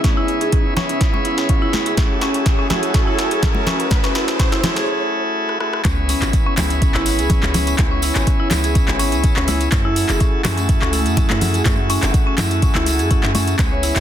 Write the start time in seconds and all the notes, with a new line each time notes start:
Already playing: C#4 G#4 E5, riser
0.04 B3 C#4 E4 G#4 C#5, kick, snare, closed hi-hat, high conga
0.17 E4
0.28 closed hi-hat
0.41 G#4, closed hi-hat
0.52 C#4, kick, closed hi-hat
0.76 B3 C#4 E4 G#4, snare, closed hi-hat, low conga
0.89 C#4, closed hi-hat
1.01 kick, snare, closed hi-hat
1.14 C#4, high conga
1.25 E4, closed hi-hat
1.38 snare, closed hi-hat
1.49 C#4, kick, closed hi-hat
1.62 E4
1.73 snare, closed hi-hat, high conga
1.86 G#4, closed hi-hat
1.97 A3 C#4 E4 F#4 G#4 C#5 G#5, kick, snare, closed hi-hat, high conga
2.21 C#4, snare, closed hi-hat
2.34 C#4, closed hi-hat
2.46 kick, snare, closed hi-hat
2.59 C#4
2.70 A3 E4 F#4 G#4, snare, closed hi-hat, high conga, low conga
2.83 closed hi-hat
2.94 C#4, kick, snare, closed hi-hat
3.07 E4
3.19 snare, closed hi-hat
3.31 G#4, closed hi-hat
3.43 C#4, kick, snare, closed hi-hat, low conga
3.55 high conga
3.67 C#4, snare, closed hi-hat, low conga
3.80 C#4, closed hi-hat
3.91 A3 E4 F#4 G#4, kick, snare, closed hi-hat, high conga
4.04 C#4, snare
4.15 E4, snare, closed hi-hat
4.28 snare, closed hi-hat
4.39 C#4, kick, snare, closed hi-hat
4.52 E4, snare
4.64 A3 E4 F#4 G#4, snare, closed hi-hat, high conga, low conga
4.76 G#4, snare, closed hi-hat
5.49 cross-stick
5.60 A3 E4 F#4 G#4, cross-stick
5.73 cross-stick
5.84 C#2 B3 C#4 E4 G#4 C#5 G#5 B5, kick, clap, closed hi-hat, tambourine, sub drop, high conga
6.09 C#4, open hi-hat, tambourine
6.22 G#1 C#4, clap, closed hi-hat, tambourine
6.33 kick, closed hi-hat, tambourine
6.47 C#4
6.57 C#2 B3 C#4 E4 G#4, clap, open hi-hat, tambourine, high conga, low conga
6.70 closed hi-hat, tambourine
6.82 C#4, kick, closed hi-hat, tambourine
6.95 G#1 E4, clap
7.06 open hi-hat, tambourine
7.19 C#2 G#4, closed hi-hat, tambourine
7.30 C#4, kick, closed hi-hat, tambourine, low conga
7.43 C#2, clap, high conga
7.54 C#4, open hi-hat, tambourine, low conga
7.67 C#4, closed hi-hat, tambourine
7.78 C#2 B3 C#4 E4 G#4 C#6, kick, clap, closed hi-hat, tambourine, high conga
7.91 C#4
8.02 E4, open hi-hat, tambourine
8.16 G#1, clap, closed hi-hat, tambourine
8.27 C#4, kick, closed hi-hat, tambourine
8.40 E4
8.51 C#2 B3 C#4 E4 G#4, clap, open hi-hat, tambourine, low conga
8.64 G#4, closed hi-hat, tambourine
8.75 C#4, kick, closed hi-hat, tambourine
8.88 G#1, clap, high conga
8.99 C#4, open hi-hat, tambourine
9.12 C#2 C#4, closed hi-hat, tambourine
9.24 kick, closed hi-hat, tambourine
9.36 C#2 C#4, clap
9.48 E4, open hi-hat, tambourine, high conga
9.60 closed hi-hat, tambourine
9.72 F#2 A3 C#4 E4 F#4 G#4 F#5, kick, clap, closed hi-hat, tambourine, high conga
9.85 E4
9.96 open hi-hat, tambourine
10.09 F#1 G#4, clap, closed hi-hat, tambourine
10.20 C#4, kick, closed hi-hat, tambourine
10.45 F#2 A3 C#4 E4 F#4 G#4, clap, open hi-hat, tambourine, high conga, low conga
10.57 C#4, closed hi-hat, tambourine
10.69 kick, closed hi-hat
10.82 C#2 C#4, clap
10.93 E4, open hi-hat, tambourine
11.06 F#2, closed hi-hat, tambourine
11.17 C#4, kick, closed hi-hat, tambourine, low conga
11.30 F#2 E4, clap, high conga
11.41 open hi-hat, tambourine, low conga
11.54 G#4, closed hi-hat, tambourine
11.65 F#2 A3 C#4 E4 F#4 G#4, kick, clap, closed hi-hat, tambourine, high conga
11.90 C#4, open hi-hat, tambourine
12.03 F#1 C#4, clap, closed hi-hat, tambourine
12.14 kick, closed hi-hat, tambourine
12.27 C#4
12.38 F#2 A3 E4 F#4 G#4, clap, open hi-hat, tambourine, low conga
12.51 closed hi-hat, tambourine
12.62 C#4, kick, closed hi-hat, tambourine
12.75 C#2 E4, clap, high conga
12.86 open hi-hat, tambourine
12.99 F#2 G#4, closed hi-hat, tambourine
13.11 C#4, kick, closed hi-hat, tambourine
13.23 F#2, clap
13.35 A3 C#4 E4 F#4 G#4, open hi-hat, tambourine, high conga
13.47 C#4, closed hi-hat, tambourine
13.59 C#2 B3 C#4 E4 G#4 B4 C#5, kick, clap, closed hi-hat, tambourine, high conga
13.72 C#5
13.83 E4, open hi-hat, tambourine
13.96 G#1, clap, closed hi-hat, tambourine